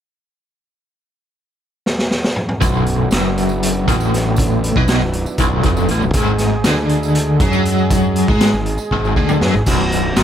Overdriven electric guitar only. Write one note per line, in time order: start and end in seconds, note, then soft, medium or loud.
2.61 3.11 B1 medium
3.13 3.87 F#2 medium
3.88 4.75 A2 loud
4.77 5.01 B2 medium
5.02 5.22 B1 medium
5.40 5.64 B1 loud
5.65 5.89 F2 loud
5.91 6.02 A2 loud
6.03 6.15 B1 medium
6.17 6.65 G#2 loud
6.66 7.40 D3 loud
7.41 8.28 F#3 loud
8.29 8.53 G#3 loud
8.54 8.74 G#2 medium
8.92 9.16 G#2 loud
9.17 9.41 D3 loud
9.41 9.53 F#3 loud
9.54 9.67 G#2 medium
9.68 10.17 B1 medium
10.17 10.23 F#2 loud